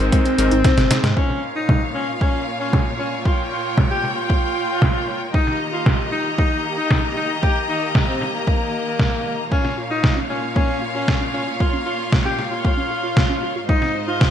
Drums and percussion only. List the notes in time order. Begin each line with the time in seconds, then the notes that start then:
0.12 kick, closed hi-hat
0.25 closed hi-hat
0.38 closed hi-hat
0.51 closed hi-hat
0.64 kick, snare, closed hi-hat
0.78 snare, closed hi-hat
0.91 snare, closed hi-hat
1.04 snare, closed hi-hat
1.17 kick
1.30 snare
1.69 kick, snare
2.21 kick
2.73 kick, snare
3.25 kick
3.78 kick, snare
4.04 snare
4.30 kick
4.82 kick, snare
5.34 kick
5.47 snare
5.86 kick, snare
6.38 kick
6.91 kick, snare
7.43 kick
7.95 kick, snare
8.21 snare
8.47 kick
8.99 kick, snare
9.52 kick
9.65 snare
10.04 kick, snare
10.56 kick
11.08 kick, snare
11.60 kick
12.12 kick, snare
12.39 snare
12.65 kick
13.17 kick, snare
13.69 kick
13.82 snare
14.21 kick, snare